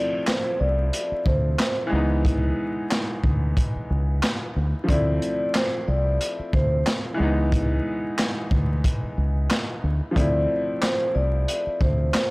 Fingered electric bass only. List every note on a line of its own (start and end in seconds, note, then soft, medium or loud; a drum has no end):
0.61 0.90 C2 medium
1.12 muted fingered electric bass stroke soft
1.26 1.55 D2 medium
1.92 2.51 C#2 medium
3.24 3.53 D2 medium
3.76 muted fingered electric bass stroke soft
3.90 4.20 C#2 medium
4.56 4.72 D2 medium
4.89 5.18 D2 loud
5.88 6.17 C2 loud
6.39 muted fingered electric bass stroke soft
6.53 6.83 D2 medium
7.20 7.79 C#2 loud
8.51 8.81 D2 medium
9.03 muted fingered electric bass stroke soft
9.18 9.47 C#2 medium
9.84 10.00 D2 medium
10.16 10.46 D2 loud
11.15 11.45 C2 medium
11.67 muted fingered electric bass stroke soft
11.81 12.10 D2 medium